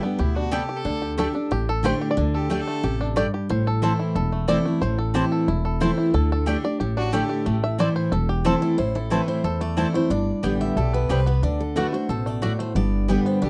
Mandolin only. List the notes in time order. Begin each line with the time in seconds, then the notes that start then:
0.51 B3 G4 D5 G5
1.18 A3 G4 D5 G5
1.84 A3 G4 D5 G5
2.50 A3 G4 D5 G5
3.16 A3 G4 D5 G5
3.82 C4 E4 C5 A5
4.48 C4 E4 C5 A5
5.14 C4 E4 C5 A5
5.80 C4 E4 C5 A5
6.46 A3 G4 D5 G5
7.13 A3 G4 D5 G5
7.78 C4 E4 C5 A5
8.45 C4 E4 C5 A5
9.10 C4 E4 C5 A5
9.77 C4 E4 C5 A5
10.43 B3 G4 D5 G5
11.09 B3 G4 D5 G5
11.76 A3 F#4 D5 F#5
12.42 A3 F#4 D5 F#5
13.08 B3 G4 D5 G5